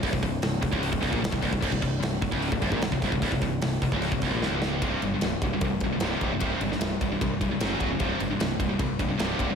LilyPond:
<<
  \new Staff \with { instrumentName = "Distorted electric guitar" } { \clef bass \time 4/4 \key bes \mixolydian \tempo 4 = 150 c,16 c,16 c,8 c,8 c,16 des,8 c,16 c,16 bes,16 c,16 c,16 c,16 c,16 | c,16 c,16 c,8 c,8 c,16 des,8 c,16 c,16 bes,16 c,16 c,16 c,16 c,16 | c,16 c,16 c,8 c,8 c,16 des,8 c,16 c,16 bes,16 des,4 | <c, g, c>8 <c, g,>16 <c, g,>16 <c, g,>8 <c, g,>16 <c, g,>16 <c, g,>8 <c, g,>16 <c, g,>16 <c, g, c>8 <c, g, c>16 <c, g,>16 |
<c, g, c>8 <c, g,>16 <c, g,>16 <c, g,>8 <c, g,>16 <c, g,>16 <c, g,>8 <c, g,>16 <c, g,>16 <fis, cis fis>8 <fis, cis fis>16 <fis, cis>16 | <c, g, c>8 <c, g,>16 <c, g,>16 <c, g,>8 <c, g,>16 <c, g,>16 <c, g,>8 <c, g,>16 <c, g,>16 <c, g, c>8 <c, g, c>16 <c, g,>16 | }
  \new Staff \with { instrumentName = "Distorted electric guitar" } { \clef bass \time 4/4 \key bes \mixolydian c,16 c,16 c,8 c,8 c,16 des,8 c,16 c,16 bes,16 c,16 c,16 c,16 c,16 | c,16 c,16 c,8 c,8 c,16 des,8 c,16 c,16 bes,16 c,16 c,16 c,16 c,16 | c,16 c,16 c,8 c,8 c,16 des,8 c,16 c,16 bes,16 des,4 | <c, g, c>8 <c, g,>16 <c, g,>16 <c, g,>8 <c, g,>16 <c, g,>16 <c, g,>8 <c, g,>16 <c, g,>16 <c, g, c>8 <c, g, c>16 <c, g,>16 |
<c, g, c>8 <c, g,>16 <c, g,>16 <c, g,>8 <c, g,>16 <c, g,>16 <c, g,>8 <c, g,>16 <c, g,>16 <fis, cis fis>8 <fis, cis fis>16 <fis, cis>16 | <c, g, c>8 <c, g,>16 <c, g,>16 <c, g,>8 <c, g,>16 <c, g,>16 <c, g,>8 <c, g,>16 <c, g,>16 <c, g, c>8 <c, g, c>16 <c, g,>16 | }
  \new Staff \with { instrumentName = "Picked electric bass" } { \clef bass \time 4/4 \key bes \mixolydian c,,16 c,,16 c,,8 c,,8 c,,16 des,,8 c,,16 c,,16 bes,,16 c,,16 c,,16 c,,16 c,,16 | c,,16 c,,16 c,,8 c,,8 c,,16 des,,8 c,,16 c,,16 bes,,16 c,,16 c,,16 c,,16 c,,16 | c,,16 c,,16 c,,8 c,,8 c,,16 des,,8 c,,16 c,,16 bes,,16 des,,4 | c,,8 g,,8 c,,8 c,,8 c,8 c,,8 c,,8 c,,8 |
c,,8 g,,8 c,,8 c,,8 c,8 c,,8 fis,,8 cis,,8 | c,,8 g,,8 c,,8 c,,8 c,8 c,,8 c,,8 c,,8 | }
  \new DrumStaff \with { instrumentName = "Drums" } \drummode { \time 4/4 <hho bd>16 bd16 <hho bd>8 <hho sn>8 <hho bd>16 bd16 hho16 bd16 <hho bd>16 bd16 <hho sn>16 bd16 <hho bd>16 bd16 | <cymc bd>16 bd16 <hho bd>8 <hho sn>8 <hho bd>16 bd16 hho16 bd16 <hho bd>16 bd16 <hho sn>16 bd16 <hho bd>16 bd16 | <hho bd>16 bd16 <hho bd>8 <hho sn>8 <hho bd>16 bd16 hho16 bd16 <hho bd>8 sn8 sn8 | <bd cymr>8 cymr8 <cymr sn>8 <bd cymr>8 <bd cymr>8 <bd cymr>8 <cymr sn>8 <bd cymr>8 |
<bd cymr>8 cymr16 sn16 <cymr sn>8 <bd cymr>8 <bd cymr>8 <bd cymr>8 <cymr sn>8 <bd cymr>8 | <bd cymr>8 cymr8 <cymr sn>8 <bd cymr>8 <bd cymr>8 <bd cymr>8 <cymr sn>8 <bd cymr>8 | }
>>